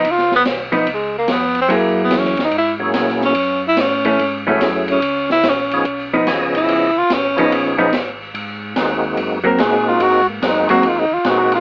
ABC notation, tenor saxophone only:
X:1
M:4/4
L:1/8
Q:"Swing" 1/4=145
K:Gb
V:1 name="Tenor saxophone"
F C z2 A, B, C =C | B, C D E _F z2 D- | D _F D3 z2 D- | D _F D3 z2 F- |
_F =F D3 z3 | z4 z B A F | G B, E G (3F E F G F |]